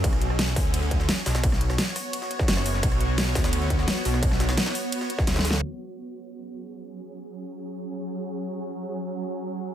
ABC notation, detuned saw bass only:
X:1
M:4/4
L:1/8
Q:1/4=172
K:Bdor
V:1 name="Detuned saw bass" clef=bass
B,,,3 D,,3 z B,,,- | B,,,2 z4 F,,,2 | B,,,3 D,,3 z B,,,- | B,,,2 z4 D,,2 |
z8 | z8 | z8 |]